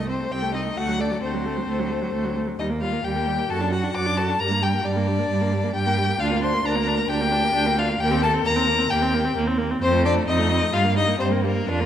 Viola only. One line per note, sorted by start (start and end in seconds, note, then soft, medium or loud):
0.00 0.10 A3 soft
0.09 0.21 C4 soft
0.20 0.30 A3 soft
0.31 0.44 C4 soft
0.43 0.55 A3 soft
0.54 0.67 C4 soft
0.65 0.76 A3 soft
0.77 0.90 A3 soft
0.88 1.01 F#3 soft
0.99 1.12 A3 soft
1.11 1.22 F#3 soft
1.22 1.36 A3 medium
1.34 1.47 F#3 soft
1.45 1.59 A3 soft
1.57 1.67 F#3 soft
1.68 1.81 A3 medium
1.79 1.92 F#3 soft
1.91 2.03 A3 soft
2.02 2.12 F#3 medium
2.13 2.26 A3 soft
2.24 2.38 F#3 soft
2.36 2.49 A3 soft
2.47 2.58 F#3 soft
2.59 2.71 G3 medium
2.70 2.83 A#3 soft
2.81 2.94 G3 medium
2.93 3.04 A#3 medium
3.04 3.17 G3 soft
3.16 3.29 A#3 medium
3.27 3.39 G3 medium
3.38 3.49 A#3 soft
3.50 3.62 F#4 medium
3.61 3.73 D4 soft
3.72 3.85 F#4 soft
3.83 3.94 D4 medium
3.95 4.08 F#4 medium
4.06 4.19 D4 soft
4.17 4.31 F#4 medium
4.29 4.39 D4 soft
4.40 4.53 G3 medium
4.51 4.64 A#3 medium
4.62 4.75 G3 medium
4.73 4.84 A#3 medium
4.85 4.98 G3 medium
4.97 5.09 A#3 medium
5.08 5.20 G3 medium
5.19 5.30 A#3 medium
5.30 5.43 G3 medium
5.42 5.55 A#3 medium
5.53 5.66 G3 soft
5.64 5.75 A#3 medium
5.75 5.88 G3 medium
5.87 5.99 A#3 medium
5.98 6.11 G3 medium
6.09 6.20 A#3 medium
6.20 6.33 D4 medium
6.31 6.44 A#3 medium
6.42 6.55 D4 medium
6.54 6.64 A#3 medium
6.65 6.77 D4 medium
6.76 6.89 A#3 medium
6.88 7.00 D4 medium
6.98 7.08 A#3 soft
7.09 7.23 D4 medium
7.21 7.34 A#3 medium
7.32 7.45 D4 medium
7.44 7.54 A#3 medium
7.55 7.68 D4 medium
7.66 7.79 A#3 medium
7.78 7.90 D4 medium
7.89 7.99 A#3 soft
8.00 8.13 A#3 medium
8.11 8.24 C4 medium
8.22 8.35 A#3 medium
8.34 8.45 C4 medium
8.45 8.58 A#3 medium
8.56 8.69 C4 medium
8.68 8.80 A#3 medium
8.79 8.90 C4 medium
8.91 9.04 A#3 medium
9.02 9.15 C4 medium
9.14 9.26 A#3 medium
9.25 9.36 C4 medium
9.36 9.49 A#3 medium
9.47 9.60 C4 medium
9.58 9.72 A#3 medium
9.71 9.81 C4 medium
9.82 9.94 C4 medium
9.93 10.07 A3 medium
10.05 10.17 C4 medium
10.16 10.27 A3 medium
10.28 10.40 C4 medium
10.39 10.52 A3 medium
10.51 10.63 C4 medium
10.62 10.72 A3 medium
10.73 10.86 G3 medium
10.85 10.98 A#3 medium
10.96 11.09 G3 medium
11.08 11.19 A#3 medium
11.20 11.33 G3 medium
11.31 11.45 A#3 medium
11.43 11.57 G3 medium
11.55 11.68 A#3 medium
11.68 11.82 D4 medium
11.80 11.86 A#3 medium